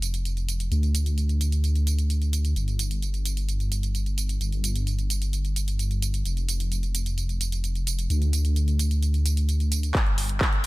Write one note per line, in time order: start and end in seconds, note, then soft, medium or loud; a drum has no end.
0.00 0.69 F1 medium
0.00 closed hi-hat medium
0.00 tambourine medium
0.14 closed hi-hat soft
0.14 tambourine soft
0.25 closed hi-hat soft
0.25 tambourine soft
0.37 closed hi-hat soft
0.37 tambourine soft
0.49 closed hi-hat medium
0.49 tambourine medium
0.60 closed hi-hat soft
0.60 tambourine soft
0.71 2.54 D2 medium
0.71 closed hi-hat soft
0.71 tambourine soft
0.83 closed hi-hat soft
0.83 tambourine soft
0.95 closed hi-hat medium
0.95 tambourine medium
1.06 closed hi-hat soft
1.06 tambourine soft
1.18 closed hi-hat soft
1.18 tambourine soft
1.29 closed hi-hat soft
1.29 tambourine soft
1.41 closed hi-hat medium
1.41 tambourine medium
1.52 closed hi-hat soft
1.52 tambourine soft
1.64 closed hi-hat soft
1.64 tambourine soft
1.75 closed hi-hat soft
1.75 tambourine soft
1.87 closed hi-hat medium
1.87 tambourine medium
1.99 closed hi-hat soft
1.99 tambourine soft
2.10 closed hi-hat soft
2.10 tambourine soft
2.22 closed hi-hat soft
2.22 tambourine soft
2.33 closed hi-hat medium
2.33 tambourine medium
2.45 closed hi-hat soft
2.45 tambourine soft
2.56 4.39 G1 medium
2.56 closed hi-hat soft
2.56 tambourine soft
2.68 closed hi-hat soft
2.68 tambourine soft
2.79 closed hi-hat medium
2.79 tambourine medium
2.91 closed hi-hat soft
2.91 tambourine soft
3.02 closed hi-hat soft
3.02 tambourine soft
3.14 closed hi-hat soft
3.14 tambourine soft
3.25 closed hi-hat medium
3.25 tambourine medium
3.37 closed hi-hat soft
3.37 tambourine soft
3.49 closed hi-hat soft
3.49 tambourine soft
3.60 closed hi-hat soft
3.60 tambourine soft
3.72 closed hi-hat medium
3.72 tambourine medium
3.83 closed hi-hat soft
3.83 tambourine soft
3.95 closed hi-hat soft
3.95 tambourine soft
4.06 closed hi-hat soft
4.06 tambourine soft
4.18 closed hi-hat medium
4.18 tambourine medium
4.29 closed hi-hat soft
4.29 tambourine soft
4.41 6.23 G1 medium
4.41 closed hi-hat soft
4.41 tambourine soft
4.52 closed hi-hat soft
4.52 tambourine soft
4.64 closed hi-hat medium
4.64 tambourine medium
4.76 closed hi-hat soft
4.76 tambourine soft
4.87 closed hi-hat soft
4.87 tambourine soft
4.99 closed hi-hat soft
4.99 tambourine soft
5.10 closed hi-hat medium
5.10 tambourine medium
5.22 closed hi-hat soft
5.22 tambourine soft
5.33 closed hi-hat soft
5.33 tambourine soft
5.45 closed hi-hat soft
5.45 tambourine soft
5.56 closed hi-hat medium
5.56 tambourine medium
5.68 closed hi-hat soft
5.68 tambourine soft
5.79 closed hi-hat soft
5.79 tambourine soft
5.91 closed hi-hat soft
5.91 tambourine soft
6.02 closed hi-hat medium
6.02 tambourine medium
6.14 closed hi-hat soft
6.14 tambourine soft
6.25 8.08 F1 medium
6.25 closed hi-hat soft
6.25 tambourine soft
6.37 closed hi-hat soft
6.37 tambourine soft
6.49 closed hi-hat medium
6.49 tambourine medium
6.60 closed hi-hat soft
6.60 tambourine soft
6.72 closed hi-hat soft
6.72 tambourine soft
6.83 closed hi-hat soft
6.83 tambourine soft
6.95 closed hi-hat medium
6.95 tambourine medium
7.06 closed hi-hat soft
7.06 tambourine soft
7.18 closed hi-hat soft
7.18 tambourine soft
7.29 closed hi-hat soft
7.29 tambourine soft
7.41 closed hi-hat medium
7.41 tambourine medium
7.52 closed hi-hat medium
7.52 tambourine soft
7.64 closed hi-hat soft
7.64 tambourine soft
7.75 closed hi-hat soft
7.75 tambourine soft
7.87 closed hi-hat medium
7.87 tambourine medium
7.99 closed hi-hat soft
7.99 tambourine soft
8.10 9.92 D2 medium
8.10 closed hi-hat soft
8.10 tambourine soft
8.22 closed hi-hat soft
8.22 tambourine soft
8.33 closed hi-hat medium
8.33 tambourine medium
8.45 closed hi-hat soft
8.45 tambourine soft
8.56 closed hi-hat soft
8.56 tambourine soft
8.68 closed hi-hat soft
8.68 tambourine soft
8.79 closed hi-hat medium
8.79 tambourine medium
8.91 closed hi-hat soft
8.91 tambourine soft
9.03 closed hi-hat soft
9.03 tambourine soft
9.14 closed hi-hat soft
9.14 tambourine soft
9.26 closed hi-hat medium
9.26 tambourine medium
9.37 closed hi-hat medium
9.37 tambourine soft
9.49 closed hi-hat medium
9.49 tambourine soft
9.60 closed hi-hat soft
9.60 tambourine soft
9.72 closed hi-hat medium
9.72 tambourine medium
9.83 closed hi-hat soft
9.83 tambourine soft
9.95 10.67 G1 medium
9.95 kick loud
9.95 clap soft
9.95 closed hi-hat medium
10.06 closed hi-hat soft
10.18 open hi-hat loud
10.29 closed hi-hat soft
10.41 kick loud
10.41 clap soft
10.41 closed hi-hat soft
10.53 closed hi-hat soft